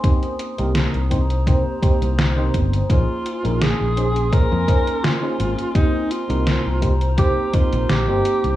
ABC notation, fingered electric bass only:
X:1
M:4/4
L:1/16
Q:"Swing 16ths" 1/4=84
K:Cphr
V:1 name="Fingered electric bass" clef=bass
z3 C,, z C,,4 z2 C,,3 G,,, z | B,,, z2 B,,, z B,,,4 F,, z4 A,,, z | z3 C,, z C,,4 z2 B,,, B,,, G,,, z C,, |]